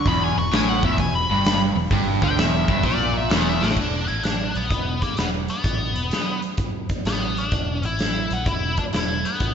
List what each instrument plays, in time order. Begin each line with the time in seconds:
0.06 fingered electric bass E1, overdriven electric guitar E2, lead electric guitar B5, kick, open hi-hat
0.23 lead electric guitar G#5
0.37 fingered electric bass E1, overdriven electric guitar E2, lead electric guitar C#6
0.52 fingered electric bass A1, overdriven electric guitar A2, lead electric guitar G#5, snare, open hi-hat
0.69 lead electric guitar F#5
0.83 fingered electric bass E1, overdriven electric guitar E2, lead electric guitar E5, kick
0.98 fingered electric bass E1, overdriven electric guitar E2, lead electric guitar G#5, kick, open hi-hat
1.15 lead electric guitar B5
1.29 fingered electric bass G1, overdriven electric guitar G2
1.45 snare, open hi-hat
1.75 fingered electric bass E1, overdriven electric guitar E2
1.91 fingered electric bass G1, overdriven electric guitar G2, kick, open hi-hat
2.22 fingered electric bass D2, overdriven electric guitar D3, lead electric guitar G5, kick
2.37 fingered electric bass E1, overdriven electric guitar E2, lead electric guitar E5, snare, open hi-hat
2.68 fingered electric bass G1, overdriven electric guitar G2, kick
2.83 fingered electric bass A#1, overdriven electric guitar A#2, lead electric guitar D5, kick, open hi-hat
3.17 lead electric guitar E5
3.30 fingered electric bass E1, overdriven electric guitar E2, lead electric guitar B3, snare, open hi-hat
3.49 lead electric guitar E5
3.61 fingered electric bass A1, overdriven electric guitar A2, lead electric guitar D4, snare
3.71 snare
3.77 fingered electric bass E1, kick, crash
4.08 fingered electric bass A1, lead electric guitar E4, closed hi-hat
4.23 lead electric guitar D4, snare, closed hi-hat
4.55 fingered electric bass A#1, lead electric guitar B3, closed hi-hat
4.70 fingered electric bass E1, lead electric guitar B3, kick, closed hi-hat
5.02 lead electric guitar A#3, kick, closed hi-hat
5.17 fingered electric bass E1, lead electric guitar B3, snare, closed hi-hat
5.48 lead electric guitar B3, closed hi-hat
5.64 fingered electric bass A1, kick, closed hi-hat
5.96 fingered electric bass E1, closed hi-hat
6.11 snare, closed hi-hat
6.42 closed hi-hat
6.57 kick, closed hi-hat
6.89 kick, closed hi-hat
7.05 fingered electric bass A1, lead electric guitar B3, snare, closed hi-hat
7.37 lead electric guitar D4, closed hi-hat
7.52 fingered electric bass E1, kick, closed hi-hat
7.74 lead electric guitar C#4
7.83 fingered electric bass A1, lead electric guitar E4, closed hi-hat
7.99 snare, closed hi-hat
8.31 fingered electric bass A#1, lead electric guitar B3, closed hi-hat
8.46 fingered electric bass E1, lead electric guitar E4, kick, closed hi-hat
8.77 lead electric guitar D4, kick, closed hi-hat
8.93 fingered electric bass E1, lead electric guitar E4, snare, closed hi-hat
9.25 lead electric guitar B3, closed hi-hat
9.40 fingered electric bass A1, kick, closed hi-hat